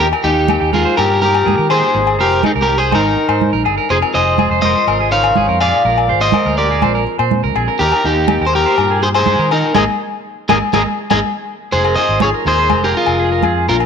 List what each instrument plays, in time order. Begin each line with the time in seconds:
0.00 fingered electric bass D#2, nylon-string guitar D#3 D#4 G4, clean electric guitar G4, alto saxophone G4
0.13 clean electric guitar A#4, low agogo
0.24 fingered electric bass D#2, clean electric guitar D#4 G4, nylon-string guitar D#4, alto saxophone D#4, muted conga
0.48 nylon-string guitar A#3, clean electric guitar G4, high conga, low agogo
0.61 fingered electric bass D#2, clean electric guitar G4
0.73 clean electric guitar F4 G#4 A#4, alto saxophone F4, high conga
0.85 clean electric guitar C5
0.97 fingered electric bass G2, nylon-string guitar A#2, alto saxophone G4, clean electric guitar G4 A#4, low agogo
1.21 clean electric guitar G4 A#4, alto saxophone G4, muted conga
1.34 low agogo
1.46 fingered electric bass G2, nylon-string guitar A#3, clean electric guitar G#4, muted conga, high conga
1.58 fingered electric bass D#3, clean electric guitar A#4
1.70 nylon-string guitar G4, clean electric guitar G#4 C5, alto saxophone G#4, low agogo
1.95 fingered electric bass G#1, nylon-string guitar G#2 A#3 D#4 G#4, muted clean electric guitar stroke, muted conga
2.07 low agogo
2.19 fingered electric bass F1, nylon-string guitar F4, clean electric guitar G4 A#4 C5, alto saxophone G4, muted conga
2.32 nylon-string guitar G#4
2.43 nylon-string guitar D#3, alto saxophone D#4, clean electric guitar D#4 G#4 A#4, high conga, low agogo
2.55 fingered electric bass C2, clean electric guitar A#4
2.60 alto saxophone G4, clean electric guitar G4 A#4
2.68 clean electric guitar G4
2.78 alto saxophone G#4, clean electric guitar G#4 C5
2.91 fingered electric bass G#1, nylon-string guitar G#2, alto saxophone D#4, clean electric guitar A#4 C5, high conga, low agogo
2.95 clean electric guitar D#4
3.04 clean electric guitar A#4
3.16 nylon-string guitar D#4, muted conga
3.29 fingered electric bass G#2, clean electric guitar C5, low agogo
3.41 nylon-string guitar G#2, muted conga, high conga
3.53 fingered electric bass A#1, clean electric guitar A#4
3.65 fingered electric bass G1, nylon-string guitar G2, clean electric guitar G#4, low agogo
3.78 clean electric guitar A#4
3.90 fingered electric bass F1, nylon-string guitar F2 G#3, clean electric guitar G#4 C5, alto saxophone G#4, muted nylon-string guitar stroke, muted conga
4.02 clean electric guitar A#4, low agogo
4.14 fingered electric bass F1, clean electric guitar G#4 C5 D#5, nylon-string guitar G#4, alto saxophone C5, muted conga
4.38 nylon-string guitar F3, clean electric guitar G#4, high conga, low agogo
4.50 fingered electric bass F1, clean electric guitar C5
4.62 clean electric guitar A#4 C5 D#5, alto saxophone C5, high conga
4.76 clean electric guitar C5
4.87 fingered electric bass G#1, nylon-string guitar C3, clean electric guitar A#4, low agogo
5.00 clean electric guitar G#4
5.11 nylon-string guitar D#4, clean electric guitar A#4 C#5 F5, alto saxophone C5, muted conga
5.24 low agogo
5.35 fingered electric bass G#1, nylon-string guitar G2, clean electric guitar G#4, muted conga, high conga
5.49 fingered electric bass F2, clean electric guitar A#4
5.61 nylon-string guitar G#2, clean electric guitar G#4 D5 F5, alto saxophone D5, low agogo
5.84 fingered electric bass A#1, nylon-string guitar A#2 G#3 G#4, clean electric guitar A#4, muted conga
5.98 low agogo
6.08 fingered electric bass G#1, nylon-string guitar G#4, clean electric guitar C5, muted conga
6.21 clean electric guitar C5 D#5, alto saxophone C5
6.32 nylon-string guitar F3, clean electric guitar A#4, high conga, low agogo
6.45 fingered electric bass D2, clean electric guitar A#4
6.58 clean electric guitar G4 A#4 D5, alto saxophone A#4
6.71 clean electric guitar G#4
6.81 fingered electric bass A#1, nylon-string guitar F2, clean electric guitar C5, high conga, low agogo
6.95 clean electric guitar A#4
7.07 nylon-string guitar G#4, muted conga
7.19 fingered electric bass A#2, clean electric guitar C5, low agogo
7.31 nylon-string guitar C3, muted conga, high conga
7.44 fingered electric bass D2, clean electric guitar A#4
7.54 fingered electric bass A#1, nylon-string guitar D3, clean electric guitar G#4, low agogo
7.68 clean electric guitar A#4
7.79 fingered electric bass D#2, nylon-string guitar D#3 D#4 G4, clean electric guitar G4 A#4, alto saxophone G4, muted conga
7.92 clean electric guitar A#4, low agogo
8.04 fingered electric bass D#2, nylon-string guitar D#4, clean electric guitar D#4 G4, alto saxophone D#4
8.28 nylon-string guitar A#3, clean electric guitar G4, high conga, low agogo
8.41 fingered electric bass D#2, clean electric guitar A#4
8.46 alto saxophone G#4, clean electric guitar C5
8.54 alto saxophone G4, clean electric guitar G4 A#4
8.66 clean electric guitar C5
8.78 fingered electric bass G2, nylon-string guitar A#2, clean electric guitar A#4, low agogo
8.90 clean electric guitar G#4
9.02 clean electric guitar G#4 C5, alto saxophone G#4, muted conga
9.15 clean electric guitar G#4 C5, alto saxophone G#4, low agogo
9.26 fingered electric bass G2, clean electric guitar G#4, muted conga, high conga
9.39 fingered electric bass D#3, clean electric guitar A#4
9.51 clean electric guitar D#4 A#4, alto saxophone D#4, nylon-string guitar G4, low agogo
9.75 fingered electric bass G#1, nylon-string guitar G#3 A#3 D#4, clean electric guitar G#4 A#4 D#5, alto saxophone G#4, high conga, low agogo
10.49 fingered electric bass G#1, nylon-string guitar G#3 A#3 D#4, clean electric guitar G#4 A#4 D#5, alto saxophone G#4, high conga, low agogo
10.73 fingered electric bass G#1, nylon-string guitar G#3 A#3 D#4, clean electric guitar G#4 A#4 D#5, alto saxophone G#4, high conga, low agogo
11.11 fingered electric bass G#1, nylon-string guitar G#3 A#3 D#4, clean electric guitar G#4 A#4 D#5, alto saxophone G#4, high conga, low agogo
11.72 fingered electric bass F1, nylon-string guitar F2 D#4, clean electric guitar G#4 C5, alto saxophone G#4, muted conga
11.85 clean electric guitar A#4, low agogo
11.96 clean electric guitar G#4 C5 D#5, nylon-string guitar G#4, alto saxophone C5
12.09 fingered electric bass G#1
12.20 nylon-string guitar F3 D#4, clean electric guitar G#4 C#5, alto saxophone G#4, high conga, low agogo
12.34 clean electric guitar A#4
12.45 fingered electric bass D#2, nylon-string guitar G#3, clean electric guitar G#4 A#4 C5, alto saxophone G#4, muted conga
12.59 clean electric guitar C5
12.70 fingered electric bass F1, clean electric guitar A#4, muted nylon-string guitar stroke, muted conga, high conga, low agogo
12.83 clean electric guitar G4 G#4 A#4, alto saxophone G4
12.94 nylon-string guitar C3 G#3, clean electric guitar F4 G#4 A#4, alto saxophone F4, muted conga
13.06 fingered electric bass F1, low agogo
13.19 nylon-string guitar G2, clean electric guitar G#4
13.32 clean electric guitar A#4
13.43 fingered electric bass F2, nylon-string guitar G#2, clean electric guitar G#4, high conga, low agogo
13.68 fingered electric bass A#1, nylon-string guitar A#2 D4, clean electric guitar F4 A#4, alto saxophone F4, muted conga
13.80 low agogo